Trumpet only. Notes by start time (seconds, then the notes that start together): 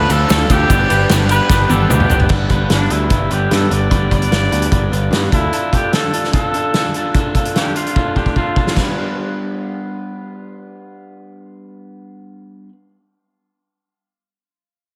Already playing: B4
0.11 A4
0.52 G4
1.31 B4
1.71 A4
1.91 G4
2.73 D4
2.91 E4
3.33 G4
3.54 A4
3.73 D5
4.15 D5
5.34 E4
5.74 G4
5.94 A4
6.33 A4
7.56 G4
7.76 F4
8.17 G4
8.37 F4